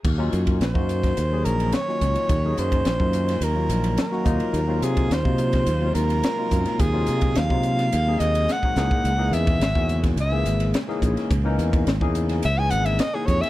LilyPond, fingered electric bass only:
\new Staff \with { instrumentName = "Fingered electric bass" } { \clef bass \time 4/4 \key ees \dorian \tempo 4 = 106 ees,8 ges,8 bes,,16 ges,8. ees,8 bes,,8 r8 des,16 r16 | ees,8 ges,8 bes,,16 ges,8. ees,8 bes,,8 r8 ees,16 r16 | ees,8 c8 ees,16 c8. ees,8 ees,8 r8 ges,16 r16 | ees,8 c8 ees,16 c8. ees,8 ees,8 r8 des,16 r16 |
des,8 fes,8 aes,,16 fes,8. des,8 aes,,8 r8 bes,,16 r16 | des,8 fes,8 aes,,16 fes,8. des,8 aes,,8 r8 f,16 r16 | }